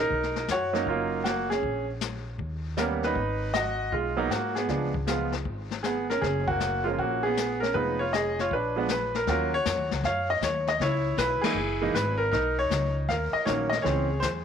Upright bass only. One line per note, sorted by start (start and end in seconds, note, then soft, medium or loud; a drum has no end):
0.11 0.46 B1 medium
0.48 0.84 F#2 medium
0.87 1.59 F#1 medium
1.63 2.35 A#1 medium
2.38 3.11 D#2 medium
3.15 3.88 G#1 medium
3.92 4.28 B1 medium
4.30 4.66 G#2 medium
4.68 5.41 C#2 medium
5.45 6.18 G#1 medium
6.22 6.94 F#1 medium
6.98 7.71 A#1 medium
7.75 8.47 F1 medium
8.51 9.23 A#1 medium
9.27 9.64 D#2 medium
9.65 9.77 F2 medium
9.77 9.91 D#2 medium
9.91 10.02 C#2 medium
10.03 10.40 F#2 medium
10.41 10.78 D#2 medium
10.79 11.17 C#2 medium
11.17 11.41 B1 medium
11.42 muted upright bass stroke soft
11.54 11.92 F#1 medium
11.94 12.31 G#1 medium
12.33 12.69 B1 medium
12.70 13.07 C#2 medium
13.08 13.32 D#2 medium
13.34 muted upright bass stroke soft
13.47 13.83 A#1 medium
13.85 14.22 C#2 medium
14.23 14.45 E2 medium